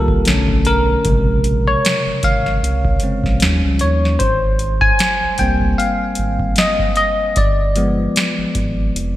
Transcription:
Already playing: C2 D#3 G3 A#3 F4 G4 A4 A#4
0.08 kick
0.25 B1 D3 A3 C#4, snare, closed hi-hat
0.48 kick
0.65 A#4, closed hi-hat
1.05 A#1 C3 C#3 G#3, kick, closed hi-hat
1.44 closed hi-hat
1.68 C#5
1.85 snare, closed hi-hat
2.06 G#1
2.23 G#1 F5, kick, closed hi-hat
2.46 snare
2.63 C2, closed hi-hat
2.85 kick
3.00 C#3 G#3 C4, closed hi-hat
3.24 A#1, kick, snare
3.40 D#2 F3 G3 C#4, snare, closed hi-hat
3.65 C#2
3.79 D#2 C#5, closed hi-hat
4.05 snare
4.19 G#1 C5, kick, closed hi-hat
4.59 closed hi-hat
4.81 G#5, kick
4.99 snare, closed hi-hat
5.22 C2
5.38 C2 G3 A#3 C4 G5, kick, closed hi-hat
5.61 kick
5.78 F5, closed hi-hat
6.15 G#1, closed hi-hat
6.40 kick
6.56 D#5, snare, closed hi-hat
6.79 kick
6.96 D#5, closed hi-hat
7.36 G1 D5, kick, closed hi-hat
7.76 F3 G#3 B3, closed hi-hat
8.16 snare, closed hi-hat
8.38 G#1
8.55 G#1, kick, closed hi-hat
8.95 F1, closed hi-hat

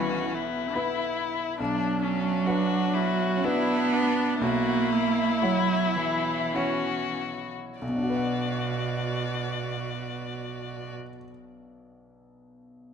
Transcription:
Already playing: B1 E3 B3 C#4 E4 F#4 B4
0.34 B3 E4
0.75 B3 E4 B4
1.59 B1 F#3 D4
2.02 C#4 D4
2.46 D4 F#4 B4
2.94 E4 F#4
3.37 C#4
3.44 B3 D4 E4 F#4 B4
3.93 D4
4.41 B1 A#3 E4 F#4
4.92 E4
5.42 F#3 E4 F#4 C#5
5.97 E3
6.54 C#4 E4 F#4 C#5
7.81 B1 B2 F#4 D5
7.89 B2
7.96 D4
8.03 F#4
8.10 B4
8.17 F#5

